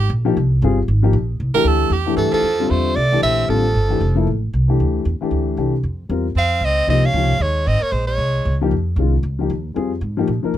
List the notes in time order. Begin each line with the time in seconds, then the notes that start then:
0.10 A#1
0.25 F3 A#3 D#4 G4
0.37 C2
0.62 G1 G3 C4 F4 G#4
0.88 G#1
1.03 F3 A#3 D#4 G4
1.13 A#1
1.40 C2
1.54 E3 A3 D4 G4 A#4, muted upright bass stroke
1.64 D2 A4
1.90 E2 G4
2.06 E3 A3 D4 G4
2.16 G2 E3 A4
2.32 F3 A4, muted upright bass stroke
2.42 F2
2.59 D3 G3 C4 F4
2.69 E2 A3 C5
2.95 C2 A3 D5
3.12 E3 A3 D4 G4
3.22 A#1 C4 E5
3.48 A1 D3 F3 G3 C4 F4 A4
3.74 G1
3.89 E3 A3 D4 G4
4.00 F1
4.15 F3 A#3 E4 A4
4.27 A1
4.53 C2
4.68 E3 A3 D4 G4
4.80 D2
5.05 E2
5.21 E3 A3 D4 G4, muted upright bass stroke
5.31 D2
5.57 C2 E3 A3 D4 G4
5.83 F2
6.09 E2 G3 C4 F4 A#4
6.35 F2 C4 F5
6.61 C#2 C4 D#5
6.87 C2 F3 A#3 C4 D#4 G4 D#5
7.04 C#4 F5
7.13 C#2 F3 A#3 D#4 G4
7.23 C2
7.32 G#1
7.39 D#2 G#3 C#5
7.66 G#1 C4 D#5
7.81 A#3 C#5, muted upright bass stroke
7.92 A#1 G#3 C5
8.07 G#3 C#5
8.18 C2
8.45 C#2
8.61 F3 A#3 D#4 G4
8.71 F2
8.96 C2 D#3 G#3 C#4 F4
9.23 C#2
9.39 F3 A#3 D#4 G4
9.50 D#2
9.74 F2 G3 C4 F4 G#4
10.01 G#2
10.17 F3 A#3 D#4 G4
10.27 A#2
10.43 F3 A#3 D#4 A#4, muted upright bass stroke
10.54 C3